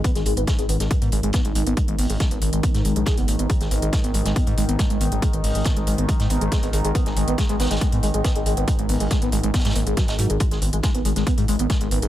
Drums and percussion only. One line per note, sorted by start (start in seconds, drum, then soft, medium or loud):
0.04 kick loud
0.04 closed hi-hat medium
0.04 closed hi-hat loud
0.15 snare soft
0.15 closed hi-hat medium
0.25 closed hi-hat medium
0.25 open hi-hat loud
0.37 closed hi-hat medium
0.47 kick loud
0.47 snare loud
0.47 closed hi-hat medium
0.59 closed hi-hat medium
0.69 closed hi-hat medium
0.69 open hi-hat loud
0.80 snare soft
0.80 closed hi-hat medium
0.90 kick loud
0.90 closed hi-hat medium
1.02 closed hi-hat medium
1.02 closed hi-hat soft
1.12 closed hi-hat medium
1.12 open hi-hat loud
1.23 closed hi-hat medium
1.33 kick loud
1.33 snare loud
1.33 closed hi-hat medium
1.45 closed hi-hat medium
1.55 closed hi-hat medium
1.55 open hi-hat loud
1.67 closed hi-hat medium
1.77 kick loud
1.77 closed hi-hat medium
1.88 closed hi-hat medium
1.99 open hi-hat loud
1.99 open hi-hat medium
2.10 closed hi-hat medium
2.20 kick loud
2.20 snare loud
2.20 closed hi-hat medium
2.31 closed hi-hat medium
2.42 closed hi-hat medium
2.42 open hi-hat loud
2.53 closed hi-hat medium
2.63 kick loud
2.63 closed hi-hat medium
2.74 snare soft
2.74 closed hi-hat medium
2.85 closed hi-hat medium
2.85 open hi-hat loud
2.96 closed hi-hat soft
3.06 kick loud
3.06 snare loud
3.06 closed hi-hat medium
3.18 closed hi-hat soft
3.28 closed hi-hat medium
3.28 open hi-hat loud
3.39 closed hi-hat soft
3.50 kick loud
3.50 closed hi-hat medium
3.61 snare soft
3.61 closed hi-hat soft
3.71 closed hi-hat medium
3.71 open hi-hat loud
3.82 closed hi-hat soft
3.93 kick loud
3.93 snare loud
3.93 closed hi-hat medium
4.04 closed hi-hat medium
4.14 closed hi-hat medium
4.14 open hi-hat loud
4.25 snare medium
4.25 closed hi-hat medium
4.36 kick loud
4.36 closed hi-hat medium
4.47 closed hi-hat soft
4.47 closed hi-hat medium
4.57 closed hi-hat medium
4.57 open hi-hat loud
4.69 closed hi-hat soft
4.79 kick loud
4.79 snare loud
4.79 closed hi-hat medium
4.90 closed hi-hat soft
5.01 closed hi-hat medium
5.01 open hi-hat loud
5.12 closed hi-hat soft
5.22 kick loud
5.22 closed hi-hat medium
5.33 closed hi-hat soft
5.44 open hi-hat medium
5.44 open hi-hat loud
5.55 closed hi-hat soft
5.64 kick loud
5.64 snare loud
5.64 closed hi-hat medium
5.77 closed hi-hat soft
5.87 closed hi-hat medium
5.87 open hi-hat loud
5.98 closed hi-hat soft
6.09 kick loud
6.09 closed hi-hat medium
6.20 snare medium
6.20 closed hi-hat medium
6.30 closed hi-hat medium
6.30 open hi-hat loud
6.41 closed hi-hat soft
6.52 kick loud
6.52 snare loud
6.52 closed hi-hat medium
6.63 closed hi-hat soft
6.73 closed hi-hat medium
6.73 open hi-hat loud
6.85 closed hi-hat soft
6.95 kick loud
6.95 closed hi-hat medium
7.06 snare soft
7.06 closed hi-hat medium
7.16 closed hi-hat medium
7.16 open hi-hat loud
7.28 closed hi-hat medium
7.38 kick loud
7.38 snare loud
7.38 closed hi-hat medium
7.49 closed hi-hat soft
7.59 snare medium
7.59 closed hi-hat medium
7.59 open hi-hat loud
7.65 snare medium
7.65 closed hi-hat medium
7.71 snare medium
7.71 closed hi-hat medium
7.75 snare medium
7.75 closed hi-hat medium
7.81 kick loud
7.81 closed hi-hat medium
7.92 closed hi-hat soft
7.92 closed hi-hat medium
8.03 closed hi-hat medium
8.03 open hi-hat loud
8.14 closed hi-hat soft
8.24 kick loud
8.24 snare loud
8.24 closed hi-hat medium
8.36 closed hi-hat medium
8.46 closed hi-hat medium
8.46 open hi-hat loud
8.57 closed hi-hat soft
8.68 kick loud
8.68 closed hi-hat loud
8.68 closed hi-hat medium
8.79 closed hi-hat medium
8.89 open hi-hat medium
8.89 open hi-hat loud
9.00 closed hi-hat medium
9.11 kick loud
9.11 snare loud
9.11 closed hi-hat medium
9.22 closed hi-hat medium
9.32 closed hi-hat medium
9.32 open hi-hat loud
9.43 closed hi-hat medium
9.54 kick loud
9.54 snare medium
9.54 closed hi-hat medium
9.59 snare medium
9.59 closed hi-hat medium
9.65 snare medium
9.65 closed hi-hat medium
9.70 snare loud
9.70 closed hi-hat medium
9.76 closed hi-hat medium
9.76 open hi-hat loud
9.87 closed hi-hat medium
9.97 kick loud
9.97 snare loud
9.97 closed hi-hat medium
10.08 snare loud
10.08 closed hi-hat medium
10.19 closed hi-hat medium
10.19 open hi-hat loud
10.30 closed hi-hat medium
10.40 kick loud
10.40 closed hi-hat medium
10.51 snare soft
10.51 closed hi-hat medium
10.62 closed hi-hat medium
10.62 open hi-hat loud
10.73 closed hi-hat medium
10.83 kick loud
10.83 snare loud
10.83 closed hi-hat medium
10.95 closed hi-hat medium
11.05 closed hi-hat medium
11.05 open hi-hat loud
11.16 snare medium
11.16 closed hi-hat medium
11.27 kick loud
11.27 closed hi-hat medium
11.37 closed hi-hat soft
11.37 closed hi-hat medium
11.48 closed hi-hat medium
11.48 open hi-hat loud
11.59 closed hi-hat medium
11.70 kick loud
11.70 snare loud
11.70 closed hi-hat medium
11.81 closed hi-hat medium
11.91 closed hi-hat medium
11.91 open hi-hat loud
12.02 closed hi-hat medium